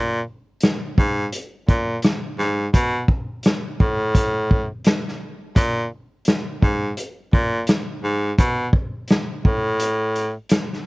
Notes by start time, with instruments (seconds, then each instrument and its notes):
Already playing: baritone saxophone A#2
0.61 cross-stick, snare, closed hi-hat
0.98 baritone saxophone G#2, kick
1.32 closed hi-hat
1.69 baritone saxophone A#2, kick, closed hi-hat
2.02 cross-stick, snare, closed hi-hat
2.39 baritone saxophone G#2, snare
2.74 baritone saxophone B2, kick, closed hi-hat
3.08 kick
3.43 cross-stick, snare, closed hi-hat
3.80 baritone saxophone A2, kick
4.15 kick, closed hi-hat
4.51 kick
4.84 cross-stick, snare, closed hi-hat
5.08 snare
5.56 baritone saxophone A#2, kick, closed hi-hat
6.25 cross-stick, snare, closed hi-hat
6.62 baritone saxophone G#2, kick
6.97 closed hi-hat
7.33 baritone saxophone A#2, kick
7.67 cross-stick, snare, closed hi-hat
8.04 baritone saxophone G#2
8.39 baritone saxophone B2, kick, closed hi-hat
8.73 kick
9.08 cross-stick, snare, closed hi-hat
9.45 baritone saxophone A2, kick
9.80 closed hi-hat
10.16 closed hi-hat
10.49 cross-stick, snare, closed hi-hat
10.73 snare